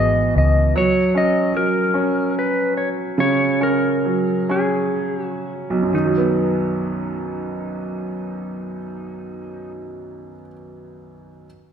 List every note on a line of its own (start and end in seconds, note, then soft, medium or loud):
0.00 0.33 G#1 medium
0.00 0.71 B2 medium
0.00 0.71 E3 medium
0.00 0.77 B3 medium
0.00 0.37 D#5 medium
0.36 0.73 C#2 medium
0.36 0.77 D#5 medium
0.76 1.52 F#3 medium
0.76 1.17 C#5 loud
1.15 1.92 C#4 medium
1.15 1.57 D#5 loud
1.54 3.14 F#3 medium
1.54 2.38 A#4 medium
1.94 3.57 C#4 medium
2.39 2.77 B4 medium
2.77 2.89 C#5 medium
3.18 5.89 C#3 medium
3.18 3.63 C#5 loud
3.61 4.48 C#4 soft
3.61 4.54 A#4 medium
4.05 5.89 F#3 soft
4.49 5.89 C#4 medium
4.49 5.24 G#4 medium
5.24 5.53 F#4 medium
5.70 10.29 B1 medium
5.82 10.35 F#2 soft
5.94 10.41 D#3 soft
5.94 9.72 D#4 medium
6.06 10.47 F#3 medium
6.18 10.53 B3 medium